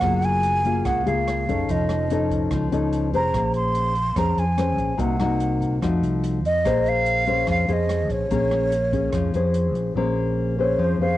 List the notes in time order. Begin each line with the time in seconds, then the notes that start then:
Already playing: F#5
0.01 F#1 F#3 A#3 F4 G#4, kick, cross-stick, closed hi-hat
0.22 G#5, closed hi-hat
0.43 closed hi-hat
0.65 A#3 F4 G#4, closed hi-hat
0.85 C#2 C#3 F#5, kick, cross-stick, closed hi-hat
1.06 C#2 A#3 F4 G#4 F5, closed hi-hat
1.28 cross-stick, closed hi-hat
1.47 F#1 C#4 D#4 A4, kick, closed hi-hat
1.68 F1 F3 D#5, kick, closed hi-hat
1.89 cross-stick, closed hi-hat
2.10 C#4 D#4 A4, closed hi-hat
2.30 kick, closed hi-hat
2.51 C#2 F3, kick, cross-stick, closed hi-hat
2.72 C#2 C#4 D#4 A4, closed hi-hat
2.93 closed hi-hat
3.13 F1 C#4 G#4 C5 A#5, closed hi-hat
3.34 A#1 A#3, kick, cross-stick, closed hi-hat
3.54 C6, closed hi-hat
3.75 closed hi-hat
3.95 closed hi-hat
4.16 F2 F3 C#4 G#4 C5 A#5, kick, cross-stick, closed hi-hat
4.37 F2 G#5, closed hi-hat
4.57 C#4 G#4 C5, cross-stick, closed hi-hat
4.78 A#1, kick, closed hi-hat
4.98 C2 C3 A#3 D#4 F#4 F#5, kick, closed hi-hat
5.20 A#3 D#4 F#4, cross-stick, closed hi-hat
5.40 closed hi-hat
5.61 kick, closed hi-hat
5.81 F2 F3 A3 D#4 F#4, kick, cross-stick, closed hi-hat
6.02 C2, closed hi-hat
6.24 closed hi-hat
6.45 F2 D#5, closed hi-hat
6.64 A#1 A#3 C#4 G#4 C5, kick, cross-stick, closed hi-hat
6.86 F5, closed hi-hat
7.06 closed hi-hat
7.26 C#4 G#4 C5, closed hi-hat
7.47 F2 F3 F5, kick, cross-stick, closed hi-hat
7.68 F2 C#4 G#4 C5, closed hi-hat
7.73 D#5
7.89 cross-stick, closed hi-hat
8.09 A#1 C#5, kick, closed hi-hat
8.30 A#1 A#3 C#4 G#4, kick, closed hi-hat
8.51 cross-stick, closed hi-hat
8.72 closed hi-hat
8.92 C#4 G#4, kick, closed hi-hat
9.13 F2 F3, kick, cross-stick, closed hi-hat
9.34 F2 C#4 G#4 C5, closed hi-hat
9.54 closed hi-hat
9.75 A#1, closed hi-hat
9.95 A#1 A#3 C#4 G#4 C5
10.58 C#4 G#4 C5 C#5
10.78 F2 F3
10.84 C5
10.98 F2 C#4 G#4 C5 F5